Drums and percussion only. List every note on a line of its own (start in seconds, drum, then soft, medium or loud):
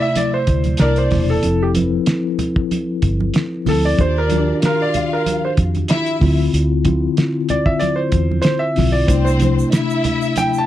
0.15 closed hi-hat medium
0.15 muted conga soft
0.15 high conga medium
0.47 kick medium
0.47 closed hi-hat medium
0.47 muted conga soft
0.64 closed hi-hat soft
0.64 high conga medium
0.77 snare loud
0.77 closed hi-hat medium
0.96 closed hi-hat medium
1.11 kick medium
1.11 snare soft
1.11 open hi-hat medium
1.11 muted conga soft
1.11 high conga medium
1.11 low conga medium
1.43 closed hi-hat loud
1.75 closed hi-hat medium
1.75 muted conga soft
1.75 high conga medium
2.06 snare medium
2.06 closed hi-hat medium
2.06 muted conga soft
2.39 closed hi-hat medium
2.39 low conga medium
2.56 kick loud
2.71 closed hi-hat medium
2.71 muted conga soft
2.71 high conga medium
3.02 kick medium
3.02 closed hi-hat medium
3.20 high conga medium
3.34 snare loud
3.34 closed hi-hat medium
3.34 muted conga soft
3.66 snare soft
3.66 open hi-hat medium
3.66 muted conga soft
3.66 high conga medium
3.66 low conga medium
3.98 kick loud
3.98 closed hi-hat medium
3.98 muted conga soft
4.30 closed hi-hat medium
4.30 muted conga soft
4.30 high conga medium
4.62 snare loud
4.62 closed hi-hat medium
4.94 closed hi-hat medium
4.94 low conga medium
5.26 closed hi-hat medium
5.26 muted conga soft
5.26 high conga medium
5.57 kick medium
5.57 closed hi-hat medium
5.57 muted conga soft
5.75 closed hi-hat soft
5.75 high conga medium
5.88 snare loud
5.88 closed hi-hat medium
6.06 closed hi-hat medium
6.21 kick loud
6.21 open hi-hat medium
6.21 high conga medium
6.21 low conga medium
6.54 closed hi-hat medium
6.85 kick medium
6.85 closed hi-hat medium
6.85 muted conga soft
6.85 high conga medium
7.17 snare medium
7.17 closed hi-hat medium
7.49 closed hi-hat medium
7.49 muted conga soft
7.49 low conga medium
7.66 kick loud
7.80 closed hi-hat medium
7.80 muted conga soft
7.80 high conga medium
8.12 kick medium
8.12 closed hi-hat medium
8.12 muted conga soft
8.31 high conga medium
8.42 snare loud
8.42 closed hi-hat medium
8.42 muted conga soft
8.76 snare soft
8.76 open hi-hat medium
8.76 high conga medium
8.76 low conga medium
9.08 kick loud
9.08 closed hi-hat medium
9.08 muted conga soft
9.08 shaker medium
9.27 shaker soft
9.40 closed hi-hat medium
9.40 muted conga soft
9.40 high conga medium
9.40 shaker soft
9.59 shaker medium
9.72 snare medium
9.72 closed hi-hat medium
9.72 muted conga soft
9.72 shaker medium
9.90 shaker soft
10.04 closed hi-hat medium
10.04 low conga medium
10.22 shaker soft
10.36 closed hi-hat medium
10.36 muted conga soft
10.36 high conga medium
10.36 shaker medium
10.54 shaker soft